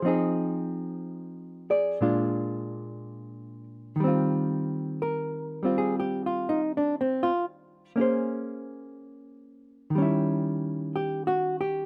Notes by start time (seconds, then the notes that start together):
0.02 F3 C4 D#4
0.08 G#4
1.70 G#4 D5
2.01 A#2 G#3 D4 F4
3.96 D#3
4.00 G3 C4
4.08 F4
5.02 A#4
5.63 G3 C4 F4
5.78 G#4
6.00 G4
6.26 F4
6.49 D#4
6.77 D4
7.01 C4
7.23 F4
7.96 A#3 C#4 G#4
8.01 C5
9.90 D#3
9.95 G3 C#4
10.02 E4
10.96 G4
11.27 F#4
11.61 G4